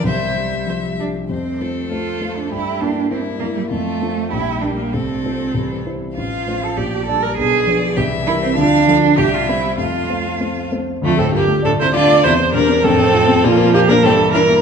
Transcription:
<<
  \new Staff \with { instrumentName = "Viola" } { \time 2/4 \key f \major \tempo 4 = 99 c''4 c''8 d''8 | a2~ | a4 g4 | a4 g4 |
a4 e8 r8 | f2 | d4 e4 | f8 f8 g4 |
a4. r8 | \key d \minor f'16 a'16 g'8 a'16 c''16 d''8 | c''8 bes'8 a'4 | f'8 g'16 bes'16 a'8 bes'8 | }
  \new Staff \with { instrumentName = "Violin" } { \time 2/4 \key f \major e''4. r8 | c''8 a'4. | g'4 e'4 | f'4 g'4 |
a'4. r8 | f''4 d''4 | b'8 d''8 e''4 | f''8 f''8 e''4 |
f''4. r8 | \key d \minor a16 c'16 bes8 d'16 e'16 f'8 | e'8 d'8 c'4 | bes8 bes16 d'16 c'8 d'8 | }
  \new Staff \with { instrumentName = "Cello" } { \time 2/4 \key f \major g4. d'8 | c'4 f'8. d'16 | e'8 d'8 c'8 bes16 g16 | a4 e'8 d'16 bes16 |
c'4. r8 | f'8. a'16 g'8 a'16 bes'16 | gis'4 g'8 e'16 c'16 | d'4 g'16 f'16 e'8 |
f'4. r8 | \key d \minor f,16 a,16 g,8 a,16 c16 d8 | c8 bes,8 a,4 | f4 e4 | }
  \new Staff \with { instrumentName = "Grand piano" } { \time 2/4 \key f \major c,16 g16 g'16 g16 f16 g16 g'16 g16 | f,8 <a f' c''>8 <a f' c''>8 <a f' c''>8 | g,8 <bes e' bes'>8 <bes e' bes'>8 <bes e' bes'>8 | f,8 <c' f' a'>8 bes,,8 <bes d' g'>8 |
c,8 <a f' c''>8 c,8 <g e' c''>8 | a,,8 <a f' c''>8 bes,,8 <g d' d''>8 | b,,8 <f d' b'>8 c,8 <g e' bes'>8 | d,8 <f f' a'>8 c,8 <g c' c''>8 |
f,8 <a c' c''>8 <a c' c''>8 <a c' c''>8 | \key d \minor d,16 a'16 f'16 a16 d''16 a'16 f'16 a16 | e,16 c''16 g'16 c'16 f,16 c''16 f'16 c'16 | bes,16 bes'16 f'16 bes16 g,16 bes'16 e'16 bes16 | }
>>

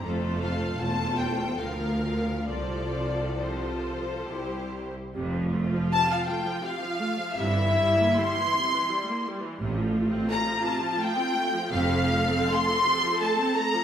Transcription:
<<
  \new Staff \with { instrumentName = "Violin section" } { \time 3/4 \key f \major \tempo 4 = 80 r8 f''8 a''8 g''8 f''4 | d''4 c''4. r8 | r4 a''16 f''16 g''8 f''4 | e''4 c'''4. r8 |
r4 bes''8 a''8 g''4 | f''4 c'''4 a''8 bes''8 | }
  \new Staff \with { instrumentName = "Violin section" } { \time 3/4 \key f \major <a' c''>4 <a' c''>4 bes'4 | <a' c''>4 <a' c''>4 <g' c''>8 r8 | r4 a''16 f''16 g''8 f''4 | e''4 c'''4. r8 |
r4 bes''8 a''8 g''4 | f''4 c'''4 a''8 bes''8 | }
  \new Staff \with { instrumentName = "Viola section" } { \clef bass \time 3/4 \key f \major << { f'4 f'4 f'4 | f'4 f'4 e'8 r8 | f'2. | e'2. |
f'2. | a'2. | } \\ { a4 a4 f4 | f4 f4 g8. r16 | c16 f16 a16 f16 c16 f16 a16 f16 c16 f16 a16 f16 | c16 e16 g16 bes16 g16 e16 c16 e16 g16 bes16 g16 e16 |
c16 f16 a16 c'16 a16 f16 c16 f16 a16 c'16 a16 f16 | c16 f16 a16 c'16 a16 f16 c16 f16 a16 c'16 a16 f16 | } >> }
  \new Staff \with { instrumentName = "Cello section" } { \clef bass \time 3/4 \key f \major f,4 e,4 d,4 | c,2 c,8 r8 | f,4 r2 | g,4 r2 |
a,4 r2 | f,4 r2 | }
  \new Staff \with { instrumentName = "Double bass section" } { \clef bass \time 3/4 \key f \major f,,4 e,,4 d,4 | c,2 c,8 r8 | f,,4 r2 | g,,4 r2 |
a,,4 r2 | f,,4 r2 | }
>>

